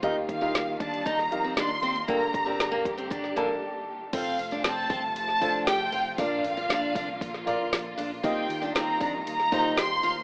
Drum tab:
CC |----------------|----------------|x---------------|----------------|
HH |x-x-x-xxx-x-x-xx|x-x-x-xxx-x-----|o-ooo-o-o-o-o-o-|o-ooo-o-o-o-o-o-|
SD |----o----o--o---|----o----o------|----o----o--o---|----o----o--o---|
BD |o-o---o-o-------|o-o---o-o-------|o-----o---o-----|o-----o-o-------|

CC |----------------|
HH |o-ooo-o-o-o-o-o-|
SD |----o----o--o---|
BD |o-----o---o-----|